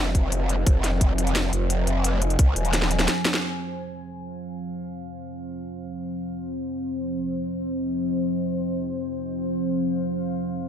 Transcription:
Already playing: wobble bass F1, ambient pad F3 C4 C5 F5
0.15 kick, closed hi-hat
0.32 closed hi-hat
0.49 closed hi-hat
0.67 wobble bass F1, ambient pad G#5, kick, closed hi-hat
0.84 snare, closed hi-hat
1.01 kick, closed hi-hat
1.18 closed hi-hat
1.27 closed hi-hat
1.36 snare, closed hi-hat
1.53 wobble bass F1, closed hi-hat
1.70 closed hi-hat
1.87 closed hi-hat
2.04 closed hi-hat
2.22 closed hi-hat
2.30 closed hi-hat
2.39 wobble bass C2, kick, closed hi-hat
2.56 wobble bass D#1, closed hi-hat
2.65 closed hi-hat
2.73 snare, closed hi-hat
2.82 snare
2.91 closed hi-hat
2.99 snare, closed hi-hat
3.08 snare, closed hi-hat
3.25 snare, closed hi-hat
3.34 snare
3.42 ambient pad F3 C4 C5 F5
6.18 ambient pad D#5
8.94 ambient pad F5

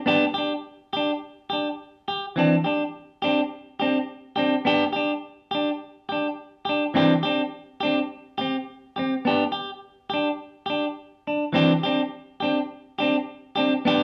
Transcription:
0.06 clean electric guitar B3 D4 G4
0.34 clean electric guitar D4 G4
0.93 clean electric guitar D4 G4
1.50 clean electric guitar D4 G4
2.08 clean electric guitar G4
2.36 clean electric guitar E3 C4 D4, muted clean electric guitar stroke
2.64 clean electric guitar D4 G4, muted clean electric guitar stroke
3.22 clean electric guitar C4 D4 G4
3.80 clean electric guitar C4 D4 G4
4.36 clean electric guitar C4 D4 G4
4.65 clean electric guitar B3 D4 G4
4.93 clean electric guitar D4 G4
5.51 clean electric guitar D4 G4
6.09 clean electric guitar D4 G4
6.65 clean electric guitar G4
6.69 clean electric guitar D4
6.94 clean electric guitar E3 C4 D4 G4
7.23 clean electric guitar C4 D4 G4
7.80 clean electric guitar D4 G4
7.85 clean electric guitar C4
8.38 clean electric guitar C4 G4, muted clean electric guitar stroke
8.96 clean electric guitar C4 G4, muted clean electric guitar stroke
9.25 clean electric guitar B3 D4 G4
9.52 clean electric guitar G4
10.10 clean electric guitar D4 G4
10.66 clean electric guitar D4 G4
11.27 clean electric guitar D4
11.53 clean electric guitar E3 C4 D4 G4
11.83 clean electric guitar C4 D4 G4
12.40 clean electric guitar C4 D4 G4
12.99 clean electric guitar C4 D4 G4
13.56 clean electric guitar C4 D4 G4
13.85 clean electric guitar B3 D4 G4

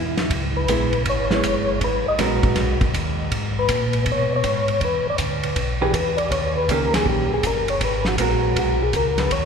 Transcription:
Already playing: tonewheel organ E2
0.17 snare, ride
0.30 tonewheel organ C#2, kick, ride
0.57 tonewheel organ B4
0.68 tonewheel organ A#1, hollow-body jazz guitar G#3 B3 E4, kick, hi-hat pedal, ride
0.93 ride
1.05 tonewheel organ G#1, kick, ride
1.09 tonewheel organ C#5
1.30 hollow-body jazz guitar G#3 B3 E4, tonewheel organ C#5, snare
1.43 tonewheel organ G1, kick, hi-hat pedal, ride
1.81 tonewheel organ G#1 B4, kick, ride
2.07 tonewheel organ G#1 D#5
2.19 tonewheel organ A#1, hollow-body jazz guitar G#3 B3 F#4 A#4, kick, snare, hi-hat pedal, ride
2.43 kick, ride
2.56 tonewheel organ B1, kick, snare, ride
2.81 kick, ride
2.94 tonewheel organ D#2, kick, hi-hat pedal, ride
3.32 tonewheel organ G#2, kick, ride
3.59 tonewheel organ B4
3.69 tonewheel organ A#2, kick, hi-hat pedal, ride
3.93 ride
4.06 tonewheel organ B2, kick, ride
4.12 tonewheel organ C#5
4.36 tonewheel organ C#5
4.44 tonewheel organ G#2, kick, hi-hat pedal, ride
4.68 ride
4.81 tonewheel organ E2 B4, kick, ride
5.06 tonewheel organ E2 D5
5.18 tonewheel organ D2, kick, hi-hat pedal, ride
5.43 ride
5.56 tonewheel organ B1, kick, ride
5.81 hollow-body jazz guitar E3 D4 G#4 B4, tonewheel organ G4
5.93 tonewheel organ E2 B4, kick, hi-hat pedal, ride
6.17 tonewheel organ D5, ride
6.31 tonewheel organ D#2 C#5, kick, ride
6.57 tonewheel organ B4
6.68 tonewheel organ C#2 A#4, hollow-body jazz guitar D#3 A#3 C#4 G4, kick, hi-hat pedal, ride
6.93 tonewheel organ C#2 G#4, snare, ride
7.06 tonewheel organ A#1 G4, kick
7.31 tonewheel organ A#1 G#4
7.43 tonewheel organ G1 A#4, kick, hi-hat pedal, ride
7.68 tonewheel organ C#5, ride
7.81 tonewheel organ G#1 B4, kick, ride
8.05 tonewheel organ F#4, snare
8.18 tonewheel organ A#1, hollow-body jazz guitar G#3 B3 F#4 A#4, kick, hi-hat pedal, ride
8.56 tonewheel organ B1 F#4, kick, ride
8.83 tonewheel organ G#4
8.93 tonewheel organ C#2 A#4, kick, hi-hat pedal, ride
9.18 tonewheel organ B4, snare, ride
9.31 tonewheel organ D#2 C#5, kick, ride

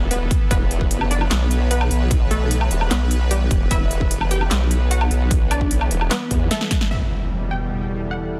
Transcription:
Already playing: supersaw synth E3 B3 A4
0.11 wobble bass E1, synth pluck B3 B4, closed hi-hat
0.21 wobble bass E1
0.31 kick, closed hi-hat
0.51 wobble bass E1, synth pluck B3 B4, supersaw synth B4, kick, closed hi-hat
0.71 closed hi-hat
0.81 kick
0.91 wobble bass F#1, closed hi-hat
1.01 low woodblock
1.11 synth pluck D4 D5, closed hi-hat
1.21 low woodblock
1.31 wobble bass B1, snare, clap, closed hi-hat
1.51 closed hi-hat
1.71 synth pluck B3 B4, closed hi-hat
1.81 low woodblock
1.91 wobble bass B1, closed hi-hat
2.11 kick, closed hi-hat
2.31 synth pluck A3 A4, closed hi-hat
2.51 closed hi-hat
2.61 low woodblock
2.71 wobble bass E1, closed hi-hat
2.81 low woodblock
2.91 wobble bass B1, synth pluck B3 B4, snare, clap, closed hi-hat
3.11 closed hi-hat
3.31 synth pluck G3 G4, closed hi-hat
3.51 wobble bass E1, kick, closed hi-hat
3.71 wobble bass E1, synth pluck E4 E5, kick, closed hi-hat
3.91 closed hi-hat
4.01 kick
4.11 wobble bass F#1, closed hi-hat
4.21 low woodblock
4.31 synth pluck G4 G5, closed hi-hat
4.41 low woodblock
4.51 wobble bass B1, snare, clap, closed hi-hat
4.71 closed hi-hat
4.91 synth pluck F#4 F#5, closed hi-hat
5.01 low woodblock
5.11 wobble bass B1, closed hi-hat
5.31 kick, closed hi-hat
5.51 synth pluck D4 D5, closed hi-hat, low woodblock
5.61 kick
5.71 closed hi-hat
5.81 low woodblock
5.91 wobble bass E1, closed hi-hat
6.01 low woodblock
6.11 synth pluck B3 B4, snare, clap, closed hi-hat
6.31 wobble bass E2, kick, closed hi-hat
6.51 synth pluck A3 A4, snare, closed hi-hat
6.61 snare
6.71 kick, snare, closed hi-hat
6.81 snare
6.91 supersaw synth E2 B2 G3, ambient pad E4, synth pluck E5, crash, impact
7.14 ambient pad A4
7.26 ambient pad D5
7.51 synth pluck G5
8.11 synth pluck F#5

